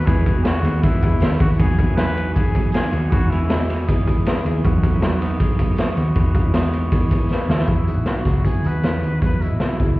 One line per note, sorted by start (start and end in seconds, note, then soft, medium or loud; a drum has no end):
0.06 0.62 E2 loud
0.06 0.35 E3 medium
0.06 0.36 G#3 medium
0.06 0.36 B3 medium
0.06 0.27 B3 medium
0.06 0.36 D#4 medium
0.06 0.26 E4 medium
0.06 0.46 G#4 loud
0.06 0.34 G#4 medium
0.06 1.19 B5 loud
0.06 kick loud
0.06 hi-hat pedal medium
0.06 ride medium
0.06 tambourine soft
0.26 0.46 D#4 medium
0.26 0.46 F#4 medium
0.26 kick medium
0.26 ride medium
0.26 tambourine medium
0.35 0.63 B3 soft
0.35 0.64 D#4 medium
0.35 0.64 G#4 medium
0.44 0.82 E4 medium
0.44 0.84 F#4 medium
0.44 0.81 G#4 medium
0.44 snare loud
0.44 ride medium
0.44 tambourine medium
0.63 0.88 D#2 loud
0.63 0.81 E3 medium
0.63 0.82 G#3 medium
0.63 0.82 B3 medium
0.63 0.83 D#4 loud
0.63 0.83 G#4 medium
0.63 ride medium
0.63 tambourine soft
0.82 1.11 E3 medium
0.82 1.12 G#3 medium
0.82 1.12 B3 medium
0.82 1.12 D#4 medium
0.82 1.03 D#4 medium
0.82 1.40 E4 medium
0.82 1.02 F#4 medium
0.82 1.10 G#4 loud
0.82 kick medium
0.82 ride medium
0.82 tambourine medium
1.02 1.19 E2 medium
1.02 1.21 E4 medium
1.02 1.21 G#4 medium
1.02 kick loud
1.02 ride medium
1.02 tambourine medium
1.11 1.32 B3 soft
1.11 1.30 D#4 medium
1.11 1.29 G#4 medium
1.20 1.37 D#2 medium
1.20 1.39 G#4 medium
1.20 1.40 B4 medium
1.20 1.56 B5 medium
1.20 snare loud
1.20 ride medium
1.20 tambourine loud
1.30 1.60 B3 medium
1.30 1.60 D#4 medium
1.30 1.59 G#4 medium
1.40 1.57 D#2 medium
1.40 1.60 E4 medium
1.40 1.49 F#4 medium
1.40 1.59 G#4 medium
1.40 kick loud
1.40 open hi-hat medium
1.40 ride medium
1.40 tambourine soft
1.59 2.89 E2 loud
1.59 1.78 F#3 medium
1.59 1.78 B3 medium
1.59 1.87 D#4 medium
1.59 1.79 D#4 medium
1.59 1.86 F#4 medium
1.59 1.95 G#4 loud
1.59 1.79 G#4 medium
1.59 1.99 B5 medium
1.59 kick loud
1.59 ride medium
1.59 tambourine soft
1.78 1.96 E3 medium
1.78 1.97 F#3 medium
1.78 1.97 B3 medium
1.78 1.98 D#4 medium
1.78 1.98 G#4 medium
1.78 kick medium
1.78 ride medium
1.78 tambourine medium
1.88 1.98 C#4 medium
1.88 1.98 E4 medium
1.96 2.38 E3 medium
1.96 2.34 F#3 medium
1.96 2.36 B3 medium
1.96 2.34 D#4 medium
1.96 2.37 D#4 medium
1.96 2.33 F#4 medium
1.96 2.38 G#4 medium
1.96 2.32 B4 loud
1.96 3.15 G#5 medium
1.96 snare loud
1.96 ride medium
1.96 tambourine medium
2.17 ride medium
2.34 2.53 F#3 medium
2.34 2.54 B3 medium
2.34 2.90 D#4 medium
2.34 2.55 D#4 medium
2.34 2.70 G#4 medium
2.34 2.89 G#4 medium
2.34 kick medium
2.34 ride medium
2.34 tambourine medium
2.38 2.55 G#4 medium
2.54 2.83 E3 medium
2.54 2.83 F#3 medium
2.54 2.83 B3 medium
2.54 2.84 D#4 medium
2.54 2.82 G#4 medium
2.54 kick medium
2.54 ride medium
2.54 tambourine medium
2.72 3.12 G#4 loud
2.72 snare loud
2.72 ride medium
2.72 tambourine loud
2.85 3.11 B3 soft
2.85 3.12 D#4 medium
2.93 3.09 D#2 loud
2.93 3.12 D#4 medium
2.93 3.11 F#4 medium
2.93 ride medium
2.93 tambourine medium
3.11 4.41 E2 loud
3.11 3.30 G#3 medium
3.11 3.31 B3 medium
3.11 3.39 D#4 medium
3.11 3.31 D#4 medium
3.11 3.31 F#4 medium
3.11 3.39 F#4 medium
3.11 3.32 G#4 medium
3.11 3.90 B5 loud
3.11 kick loud
3.11 ride medium
3.11 tambourine soft
3.30 3.49 E3 medium
3.30 3.49 G#3 medium
3.30 3.50 B3 medium
3.30 3.51 D#4 medium
3.30 3.87 E4 medium
3.30 3.50 G#4 medium
3.30 ride medium
3.30 tambourine medium
3.41 3.50 C#4 medium
3.41 3.50 E4 medium
3.49 3.88 E3 medium
3.49 3.87 G#3 medium
3.49 3.89 B3 medium
3.49 3.86 F#4 medium
3.49 3.89 G#4 medium
3.49 3.86 D#5 medium
3.49 snare loud
3.49 ride medium
3.49 tambourine medium
3.70 snare soft
3.70 ride medium
3.88 4.06 G#3 medium
3.88 4.06 B3 medium
3.88 4.06 D#4 medium
3.88 4.25 E4 medium
3.88 4.24 G#4 medium
3.88 4.60 D#6 loud
3.88 kick medium
3.88 ride medium
3.88 tambourine medium
3.92 4.07 G#4 medium
4.06 4.35 E3 medium
4.06 4.35 G#3 medium
4.06 4.35 B3 medium
4.06 4.34 D#4 loud
4.06 4.33 G#4 medium
4.06 kick medium
4.06 ride medium
4.06 tambourine medium
4.26 4.45 G#4 medium
4.26 4.45 B4 medium
4.26 snare loud
4.26 ride medium
4.26 tambourine loud
4.34 4.64 B3 soft
4.34 4.64 D#4 medium
4.34 4.63 G#4 medium
4.45 4.61 D#2 medium
4.45 4.65 E4 medium
4.45 4.64 G#4 medium
4.45 ride medium
4.45 tambourine medium
4.64 5.93 E2 loud
4.64 4.82 F#3 medium
4.64 4.82 B3 medium
4.64 4.91 D#4 medium
4.64 4.83 D#4 medium
4.64 4.91 F#4 loud
4.64 4.83 A4 medium
4.64 5.03 C#6 loud
4.64 kick loud
4.64 ride medium
4.82 4.99 E3 medium
4.82 5.01 F#3 medium
4.82 5.01 B3 medium
4.82 5.01 D#4 loud
4.82 5.02 A4 medium
4.82 kick medium
4.82 ride medium
4.82 tambourine medium
4.93 5.02 C#4 medium
4.93 5.02 E4 medium
5.01 5.42 E3 medium
5.01 5.38 F#3 loud
5.01 5.40 B3 loud
5.01 5.41 D#4 medium
5.01 5.38 D#4 medium
5.01 5.38 F#4 medium
5.01 5.40 A4 loud
5.01 5.11 B5 loud
5.01 snare loud
5.01 ride medium
5.01 tambourine medium
5.22 5.75 D#6 loud
5.22 snare soft
5.22 ride medium
5.22 tambourine soft
5.39 5.58 F#3 medium
5.39 5.59 B3 medium
5.39 5.94 D#4 medium
5.39 5.59 D#4 medium
5.39 5.94 G#4 medium
5.39 5.60 A4 medium
5.39 kick medium
5.39 ride medium
5.39 tambourine medium
5.58 5.87 E3 medium
5.58 5.87 F#3 medium
5.58 5.88 B3 medium
5.58 5.87 D#4 medium
5.58 5.85 A4 medium
5.58 kick medium
5.58 ride medium
5.58 tambourine medium
5.76 6.14 C#6 medium
5.76 snare loud
5.76 ride medium
5.76 tambourine loud
5.87 6.14 B3 soft
5.87 6.15 D#4 soft
5.87 6.16 A4 medium
5.97 6.13 D#2 medium
5.97 6.16 D#4 medium
5.97 6.15 F#4 medium
5.97 ride soft
5.97 tambourine medium
6.14 7.45 E2 loud
6.14 6.34 G#3 medium
6.14 6.35 B3 medium
6.14 6.35 D#4 medium
6.14 6.43 D#4 medium
6.14 6.43 F#4 medium
6.14 6.36 G#4 medium
6.14 6.55 B5 medium
6.14 kick loud
6.14 ride medium
6.34 6.52 E3 medium
6.34 6.53 G#3 medium
6.34 6.54 B3 medium
6.34 6.54 D#4 loud
6.34 6.54 G#4 medium
6.34 kick medium
6.34 ride medium
6.34 tambourine medium
6.44 6.54 C#4 medium
6.44 6.54 E4 medium
6.53 6.97 E3 medium
6.53 6.91 G#3 medium
6.53 6.92 B3 loud
6.53 6.90 D#4 medium
6.53 6.92 D#4 medium
6.53 6.90 F#4 medium
6.53 6.94 G#4 medium
6.53 6.72 D#6 loud
6.53 snare loud
6.53 ride medium
6.53 tambourine medium
6.73 6.93 C#6 loud
6.73 ride medium
6.73 tambourine soft
6.91 7.08 G#3 medium
6.91 7.09 B3 medium
6.91 7.10 D#4 medium
6.91 7.29 E4 medium
6.91 7.28 G#4 medium
6.91 7.10 G#4 medium
6.91 7.30 B5 medium
6.91 kick medium
6.91 ride medium
6.91 tambourine medium
7.09 7.39 E3 medium
7.09 7.39 G#3 medium
7.09 7.39 B3 medium
7.09 7.39 D#4 medium
7.09 7.37 G#4 medium
7.09 kick loud
7.09 ride medium
7.09 tambourine medium
7.29 7.48 G#4 medium
7.29 7.49 B4 medium
7.29 7.67 B5 medium
7.29 snare medium
7.29 tambourine loud
7.38 7.67 B3 soft
7.38 7.69 D#4 soft
7.38 7.68 G#4 medium
7.49 7.65 D#2 medium
7.49 7.68 E4 medium
7.49 7.69 E4 medium
7.49 7.67 G#4 medium
7.49 snare medium
7.58 snare medium
7.67 7.93 E2 medium
7.67 7.97 F#3 medium
7.67 7.97 B3 medium
7.67 7.88 E4 medium
7.67 7.97 E4 medium
7.67 8.09 E4 medium
7.67 7.87 G#4 medium
7.67 7.95 G#4 medium
7.67 kick medium
7.67 closed hi-hat medium
7.87 8.24 D#4 soft
7.87 8.24 F#4 medium
7.87 closed hi-hat medium
7.96 8.05 A1 medium
7.96 8.15 B3 soft
7.96 8.14 E4 soft
7.96 8.13 G#4 soft
8.06 8.23 B1 medium
8.06 8.47 F#4 medium
8.06 snare medium
8.06 closed hi-hat medium
8.15 8.46 E3 medium
8.15 8.43 F#3 medium
8.15 8.44 B3 medium
8.15 8.45 E4 medium
8.15 8.44 G#4 medium
8.25 8.42 C#2 medium
8.25 8.63 E4 soft
8.25 8.62 G#4 medium
8.25 kick medium
8.25 snare soft
8.25 closed hi-hat medium
8.44 8.61 B1 medium
8.44 8.73 F#3 medium
8.44 8.74 B3 medium
8.44 8.74 E4 medium
8.44 8.68 G#4 medium
8.44 8.71 G#4 medium
8.44 kick medium
8.44 closed hi-hat medium
8.63 8.80 D#2 medium
8.63 8.84 D#4 soft
8.63 8.84 F#4 medium
8.63 9.23 B4 medium
8.63 closed hi-hat medium
8.73 8.94 B3 soft
8.73 8.93 E4 soft
8.73 8.91 G#4 soft
8.83 8.99 E2 medium
8.83 9.04 E4 medium
8.83 9.03 G#4 medium
8.83 snare loud
8.83 closed hi-hat medium
8.92 9.22 E4 soft
8.92 9.22 G#4 soft
9.02 9.19 D#2 medium
9.02 9.23 D#4 soft
9.02 9.22 F#4 medium
9.02 closed hi-hat soft
9.21 9.46 E2 loud
9.21 9.51 F#3 medium
9.21 9.51 B3 medium
9.21 9.51 E4 medium
9.21 9.42 E4 medium
9.21 9.42 G#4 medium
9.21 9.49 G#4 medium
9.21 9.43 B4 medium
9.21 kick loud
9.21 closed hi-hat medium
9.42 9.99 E4 medium
9.42 9.78 F#4 medium
9.42 9.78 D#5 medium
9.42 closed hi-hat medium
9.50 9.59 A1 medium
9.50 9.70 B3 soft
9.50 9.69 E4 soft
9.50 9.69 G#4 soft
9.60 9.77 B1 medium
9.60 snare loud
9.60 closed hi-hat medium
9.70 10.00 E3 medium
9.70 9.97 F#3 medium
9.70 9.98 B3 medium
9.70 9.99 E4 medium
9.70 9.99 G#4 medium
9.80 9.96 C#2 medium
9.80 10.00 E4 soft
9.80 10.00 G#4 medium
9.80 kick medium
9.80 closed hi-hat medium